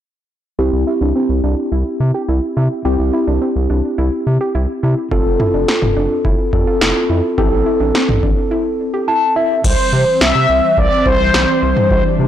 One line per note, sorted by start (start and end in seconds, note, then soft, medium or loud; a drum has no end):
0.59 0.70 C2 loud
0.59 2.81 C4 medium
0.59 2.81 E4 medium
0.59 0.73 G4 loud
0.59 2.81 G4 medium
0.73 0.84 C2 medium
0.87 0.94 E4 medium
1.01 1.13 C2 medium
1.01 1.09 D4 medium
1.15 1.30 C4 medium
1.29 1.41 C2 medium
1.44 1.55 C2 medium
1.44 1.58 D4 medium
1.72 1.83 C2 loud
1.72 1.87 E4 medium
2.00 2.12 C3 medium
2.14 2.22 G4 medium
2.28 2.40 C2 loud
2.28 2.43 E4 medium
2.57 2.68 C3 medium
2.57 2.72 E4 medium
2.85 2.96 C2 loud
2.85 5.08 C4 medium
2.85 5.08 E4 medium
2.85 3.00 G4 medium
2.85 5.08 G4 medium
2.99 3.11 C2 loud
3.13 3.21 E4 medium
3.27 3.39 C2 medium
3.27 3.35 D4 medium
3.41 3.56 C4 medium
3.56 3.67 C2 loud
3.70 3.81 C2 loud
3.70 3.85 D4 medium
3.98 4.10 C2 loud
3.98 4.13 E4 medium
4.27 4.38 C3 medium
4.41 4.48 G4 medium
4.55 4.66 C2 loud
4.55 4.70 E4 medium
4.83 4.95 C3 loud
4.83 4.98 E4 medium
5.11 5.23 F1 loud
5.11 6.50 C4 medium
5.11 5.26 F4 medium
5.11 6.50 F4 medium
5.11 6.50 A4 medium
5.11 kick loud
5.26 5.37 F1 loud
5.40 5.47 E4 medium
5.40 mid tom medium
5.54 5.65 F1 medium
5.54 5.61 D4 medium
5.68 5.83 C4 medium
5.68 snare loud
5.82 5.94 F1 loud
5.82 mid tom medium
5.96 6.08 F1 loud
5.96 6.11 D4 medium
6.25 6.36 F1 loud
6.25 6.40 E4 medium
6.25 kick loud
6.53 6.64 F2 medium
6.53 7.37 C4 medium
6.53 7.38 F4 soft
6.53 7.37 A4 medium
6.53 kick medium
6.67 6.75 F4 medium
6.81 6.93 F1 loud
6.81 6.96 E4 medium
6.81 snare loud
7.10 7.21 F2 loud
7.10 7.24 E4 medium
7.38 7.49 A1 loud
7.38 9.61 C4 medium
7.38 9.60 E4 medium
7.38 7.53 G4 loud
7.38 9.61 A4 medium
7.38 kick loud
7.52 7.63 A1 loud
7.66 7.73 E4 medium
7.80 7.92 A1 loud
7.80 7.88 D4 medium
7.94 8.09 C4 medium
7.94 snare loud
8.09 8.20 A1 loud
8.09 mid tom medium
8.23 8.34 A1 loud
8.23 8.38 D4 medium
8.23 kick medium
8.51 8.66 E4 medium
8.94 9.01 G4 medium
9.08 9.23 E4 medium
9.08 9.34 A5 medium
9.36 9.51 E4 medium
9.36 9.62 E5 medium
9.64 9.76 C2 loud
9.64 12.28 E3 medium
9.64 12.28 G3 medium
9.64 11.89 C4 medium
9.64 10.23 C5 medium
9.64 kick loud
9.64 crash medium
9.93 10.04 C3 loud
10.21 10.32 C2 loud
10.21 10.79 E5 loud
10.21 snare loud
10.35 10.47 C3 medium
10.49 10.61 C2 loud
10.78 10.89 C2 loud
10.78 11.07 D5 loud
10.78 kick medium
11.06 11.17 C2 medium
11.06 11.90 C5 loud
11.06 kick medium
11.20 11.31 C2 loud
11.34 11.46 B1 loud
11.34 snare loud
11.63 11.74 C2 medium
11.77 mid tom medium
11.91 12.02 C2 loud
11.91 12.28 D4 medium
11.91 12.04 C5 medium
11.91 kick loud
12.19 12.28 C3 medium
12.19 12.28 C5 medium